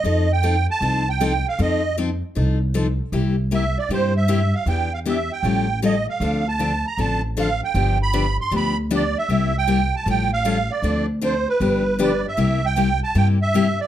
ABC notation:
X:1
M:4/4
L:1/16
Q:"Swing" 1/4=156
K:F
V:1 name="Accordion"
_e2 g4 a4 g4 f2 | _e4 z12 | z4 e2 d2 c2 e4 f2 | g2 f2 e2 g6 _e2 ^e2- |
^e2 a4 b2 a2 z2 f2 g2- | g2 =b4 c'2 b2 z2 d2 e2- | e2 g4 a2 g2 ^e4 d2- | d2 z2 c2 =B6 d2 e2- |
e2 g4 a2 g2 e4 d2 |]
V:2 name="Steel-string acoustic guitar"
[F,C_EA]2 z2 [F,CEA] z3 [F,CEA]2 z2 [F,CEA] z3 | [F,C_EA]2 z2 [F,CEA] z3 [F,CEA]2 z2 [F,CEA] z3 | [C,G,B,EG]2 z2 [C,G,B,EG] z3 [C,G,B,EG]2 z2 [C,G,B,EG] z3 | [E,=B,DG]2 z2 [E,B,DG] z3 [^E,G,^C^EA]2 z2 [E,G,CEA] z3 |
[D,F,CDA]2 z2 [D,F,CDA] z3 [D,F,CDA]2 z2 [D,F,CDA] z3 | [D,F,=B,DG]2 z2 [D,F,B,DG] z3 [D,F,B,DG]2 z2 [D,F,B,DG] z3 | [C,G,B,EG]2 z2 [C,G,B,EG] z3 [^E,G,^C^EA]2 z2 [E,G,CEA] z3 | [D,F,CDA]2 z2 [D,F,CDA] z3 [D,F,=B,DG]2 z2 [D,F,B,DG] z3 |
[C,G,B,EG]2 z2 [C,G,B,EG] z3 [C,G,B,EG]2 z2 [C,G,B,EG] z3 |]
V:3 name="Upright bass" clef=bass
F,,8 C,,8 | F,,8 C,,8 | C,,8 G,,8 | E,,8 A,,,8 |
D,,8 A,,,8 | G,,,8 D,,8 | C,,8 A,,,8 | D,,8 G,,,8 |
C,,8 G,,8 |]